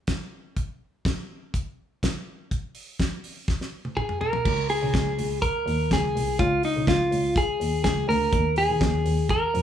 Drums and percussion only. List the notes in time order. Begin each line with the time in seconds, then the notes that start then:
0.07 kick, snare, closed hi-hat
0.57 kick, closed hi-hat
1.05 kick, snare, closed hi-hat
1.54 kick, closed hi-hat
2.03 kick, snare, closed hi-hat
2.51 kick, closed hi-hat
2.75 open hi-hat
2.99 kick, snare, closed hi-hat
3.24 open hi-hat
3.48 kick, snare
3.61 snare
3.85 high tom
3.97 kick, mid tom
4.09 mid tom
4.21 floor tom
4.33 floor tom
4.45 kick, crash
4.69 open hi-hat
4.94 kick, snare, closed hi-hat
5.19 open hi-hat
5.42 kick, closed hi-hat
5.68 open hi-hat
5.91 kick, snare, closed hi-hat
6.17 open hi-hat
6.39 kick, closed hi-hat
6.63 open hi-hat
6.87 kick, snare, closed hi-hat
7.12 open hi-hat
7.36 kick, closed hi-hat
7.61 open hi-hat
7.84 kick, snare, closed hi-hat
8.10 open hi-hat
8.33 kick, closed hi-hat
8.56 open hi-hat
8.81 kick, snare, closed hi-hat
9.06 open hi-hat
9.29 kick, closed hi-hat
9.55 open hi-hat